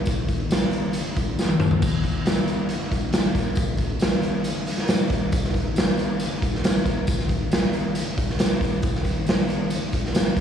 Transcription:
0.06 kick, closed hi-hat, tambourine
0.28 kick, closed hi-hat, tambourine
0.51 snare, closed hi-hat, tambourine
0.71 closed hi-hat, tambourine
0.93 closed hi-hat, tambourine
1.16 kick, closed hi-hat, tambourine
1.39 snare, tambourine
1.49 high tom
1.60 mid tom, tambourine
1.71 floor tom
1.82 kick, crash, tambourine
2.04 kick, closed hi-hat, tambourine
2.26 snare, closed hi-hat, tambourine
2.48 closed hi-hat, tambourine
2.69 closed hi-hat, tambourine
2.92 kick, closed hi-hat, tambourine
3.13 snare, closed hi-hat, tambourine
3.35 kick, snare, closed hi-hat, tambourine
3.55 kick, closed hi-hat, tambourine
3.77 kick, closed hi-hat, tambourine
4.00 snare, closed hi-hat, tambourine
4.22 closed hi-hat, tambourine
4.44 closed hi-hat, tambourine
4.66 closed hi-hat, tambourine
4.78 snare
4.88 snare, closed hi-hat, tambourine
5.10 kick, snare, closed hi-hat, tambourine
5.32 kick, closed hi-hat, tambourine
5.45 snare
5.54 kick, closed hi-hat, tambourine
5.76 snare, closed hi-hat, tambourine
5.97 closed hi-hat, tambourine
6.20 closed hi-hat, tambourine
6.42 kick, closed hi-hat, tambourine
6.55 snare
6.64 snare, closed hi-hat, tambourine
6.86 kick, snare, closed hi-hat, tambourine
7.07 kick, closed hi-hat, tambourine
7.20 snare
7.29 kick, closed hi-hat, tambourine
7.51 snare, closed hi-hat, tambourine
7.73 closed hi-hat, tambourine
7.95 closed hi-hat, tambourine
8.18 kick, closed hi-hat, tambourine
8.30 snare
8.39 snare, closed hi-hat, tambourine
8.61 kick, snare, open hi-hat, tambourine
8.82 kick, closed hi-hat, tambourine
8.95 snare
9.04 kick, closed hi-hat, tambourine
9.26 snare, closed hi-hat, tambourine
9.49 closed hi-hat, tambourine
9.70 closed hi-hat, tambourine
9.93 kick, closed hi-hat, tambourine
10.05 snare
10.15 snare, closed hi-hat, tambourine
10.37 kick, closed hi-hat, tambourine

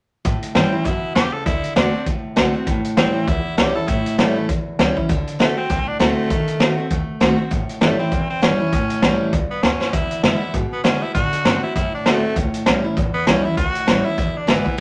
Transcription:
0.25 A2, kick, closed hi-hat
0.43 muted upright bass stroke, closed hi-hat
0.55 G2 E3 G3 C4 C#4 E4, snare, closed hi-hat
0.72 C#4 E4, muted upright bass stroke
0.85 F#2 B2 E4, kick, closed hi-hat
1.04 muted upright bass stroke
1.15 E2 C#3 G4, snare, closed hi-hat
1.33 A4, muted upright bass stroke
1.46 D2 D3 E4, kick, closed hi-hat
1.64 closed hi-hat
1.76 E2 D3 A3 C4 D4 F#4, snare, closed hi-hat
1.94 C4 F#4, muted upright bass stroke
2.06 F#2 A2, kick, closed hi-hat
2.36 B1 D3 A3 C4 F#4, snare, closed hi-hat
2.54 C4 F#4
2.67 A1 A2, kick, closed hi-hat
2.85 closed hi-hat
2.97 D2 E3 G3 C4 C#4 E4, snare, closed hi-hat
3.14 C#4 E4
3.28 C#2 E2 E4, kick, closed hi-hat
3.45 muted upright bass stroke
3.57 B1 E3 G3 C#4 E4 G4, snare, closed hi-hat
3.75 C#4 E4 A4
3.88 A1 A2 E4, kick, closed hi-hat
4.06 closed hi-hat
4.18 G1 E3 G3 A3 C#4 E4, snare, closed hi-hat
4.35 C#4 E4, muted upright bass stroke
4.49 B1 E2, kick, closed hi-hat
4.79 C#2 E3 G3 C#4 E4, snare, closed hi-hat
4.96 C#4 E4, muted upright bass stroke, kick
5.09 D2 D3, kick, closed hi-hat
5.27 muted upright bass stroke, closed hi-hat
5.39 B1 D3 A3 C4 F#4, snare, closed hi-hat
5.56 C4 F#4, muted upright bass stroke
5.69 C2 A2, kick, closed hi-hat
5.87 D4, muted upright bass stroke
5.99 D2 D3 A3 C4 F#4, snare, closed hi-hat
6.18 muted upright bass stroke
6.30 D#3, kick, closed hi-hat
6.48 muted upright bass stroke, closed hi-hat
6.60 F2 D#3 A3 C4 F#4, snare, closed hi-hat
6.78 C4 F#4, muted upright bass stroke
6.90 D#2 A3, kick, closed hi-hat
7.08 muted upright bass stroke
7.20 C2 D#3 A3 C4 F#4, snare, closed hi-hat
7.38 C4 F#4
7.51 A1 A2, kick, closed hi-hat
7.69 muted upright bass stroke, closed hi-hat
7.81 G1 E3 G3 A3 C#4 E4, snare, closed hi-hat
7.99 C4 C#4 E4, muted upright bass stroke
8.11 F#1 E2, kick, closed hi-hat
8.30 C4, muted upright bass stroke
8.42 G1 E3 G3 C#4 E4, snare, closed hi-hat
8.59 C#4 E4, muted upright bass stroke
8.73 A1 A2, kick, closed hi-hat
8.90 closed hi-hat
9.02 B1 E3 G3 C#4 E4, snare, closed hi-hat
9.33 C#2 G2, kick, closed hi-hat
9.50 B3, muted upright bass stroke
9.63 D2 F#2 C#4, snare, closed hi-hat
9.80 muted upright bass stroke, snare
9.93 E2 E4, kick, closed hi-hat
10.11 closed hi-hat
10.23 F#2 D3 G#3 B3 E4, snare, closed hi-hat
10.41 B3 E4
10.54 G#2 B2, kick, closed hi-hat
10.72 B3, muted upright bass stroke
10.84 B2 D3 G#3 B3 C#4 E4, snare, closed hi-hat
11.02 B3 E4, muted upright bass stroke
11.14 A2 D3 F#4, kick, closed hi-hat
11.33 closed hi-hat
11.45 G2 D3 A3 C4 F#4, snare, closed hi-hat
11.63 C4 E4 F#4
11.76 F#2 A2 E4, kick, closed hi-hat
11.94 D4, muted upright bass stroke
12.06 D2 D3 A3 C4 F#4, snare, closed hi-hat
12.24 C4 F#4, muted upright bass stroke
12.36 C#2 A2, kick, closed hi-hat
12.54 muted upright bass stroke, closed hi-hat
12.66 B1 E3 G3 C#4 E4, snare, closed hi-hat
12.84 C#4 E4, muted upright bass stroke
12.97 A1 E2, kick, closed hi-hat
13.14 B3
13.27 B1 E3 G3 C#4 E4, snare, closed hi-hat
13.44 C#4 E4
13.57 C#2 A2 F#4, kick, closed hi-hat
13.75 closed hi-hat
13.86 A1 E3 G3 C#4 E4, snare, closed hi-hat
14.05 C#4 E4
14.17 E1 E2 E4, kick, closed hi-hat
14.35 D4, muted upright bass stroke
14.47 G#1 D3 E3 G#3 B3 E4, snare, closed hi-hat
14.65 B3 E4, muted upright bass stroke, kick

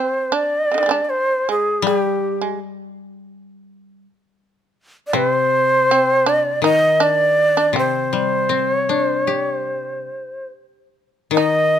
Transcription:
Already playing: C4 C5
0.32 D4 D5
0.71 C3 D3
0.78 D#3
0.83 G3 G#3
0.89 C4 D4
1.05 D5
1.10 C5
1.49 G#3 G#4
1.82 G3
1.87 G3 G4
2.42 G#3
5.07 D5
5.13 C3 C4 B4
5.28 C5
5.91 C4
6.26 D4 D5
6.62 D#3 D#4 D#5
7.00 D4 D5
7.57 D4
7.73 C3 C4
7.79 C5
8.13 G3
8.49 C4
8.74 C#5
8.89 D4
9.00 C5
9.27 G4 C#5
9.54 C5
11.31 D#3 D#5
11.37 D#4

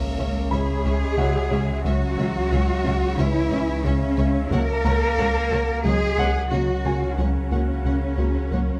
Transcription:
Already playing: C#2 G#3 A#3 C#4 A#4 C#5 E5 B6, impact
0.18 C#2 C#4 C#5 E5
0.51 C#2 C#3 G#3 C#4 G#4 C#5 E5 B5
0.84 C#2 C#4 C#5 E5
1.17 C#2 C#3 G#3 C#4 F#4 C#5 E5 F#5
1.51 C#2 C#3 G#3 C#4 C#5 E5
1.84 C#2 C#3 F#3 C#4 F#4 C#5 E5
2.18 C#2 E3 C#4 C#5 E5
2.51 C#2 C#4 C#5 E5
2.84 C#2 C#4 C#5 E5
3.18 C#2 C#3 E3 C#4 E4 C#5 E5
3.51 C#2 C#4 C#5 E5
3.84 C#2 C#3 G#3 C#4 C#5 E5
4.17 C#2 C#3 G#3 C#4 C#5 E5
4.51 C#2 F#3 A#3 C#4 A#4 C#5 F#5
4.84 C#2 A#3 C#5 F#5 A#5
5.18 C#2 A#3 C#5 F#5
5.51 C#2 A#3 F#4 C#5 F#5
5.84 C#2 F#3 G#3 A#3 G#4 C#5 F#5
6.17 C#2 A#3 C#5 F#5
6.51 C#2 C#3 F#3 A#3 C#4 F#4 C#5 F#5
6.84 C#2 C#3 A#3 C#4 C#5 F#5 G#5
7.18 C#2 C#3 F#3 A#3 C#4 C#5 F#5
7.51 C#2 A#3 F#4 C#5 F#5
7.84 C#2 A#3 C#5 F#5
8.18 C#2 A#3 F#4 C#5 F#5
8.51 C#2 F#3 A#3 C#5 F#5

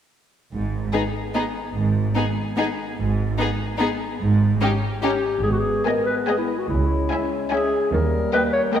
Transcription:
0.51 G#1 G#2
0.92 B3 D#4 G#4
1.34 B3 D#4 G#4
1.75 G#1 G#2
2.15 B3 D#4 G#4
2.57 B3 D#4 G#4
2.98 G#1 G#2
3.38 B3 D#4 G#4
3.78 B3 D#4 G#4
4.20 G#1 G#2
4.61 C#4 D#4 G4
5.01 C#4 D#4 G4
5.43 G#1 G#2 G#3 B3 G#4
5.52 F#4
5.59 G#4
5.85 B3 A#4 D#5 G#5
6.06 B4
6.27 B3 G#4 D#5 G#5
6.38 E4
6.59 F#4
6.69 C#2 C#4 E4
7.10 C#4 E5 G#5
7.50 C#4 G#4 E5 G#5
7.91 D#2 G3 A#3 A#4
8.34 A#3 B4 D#5 G5
8.53 C#5
8.73 A#3 A#4 D#5 G5

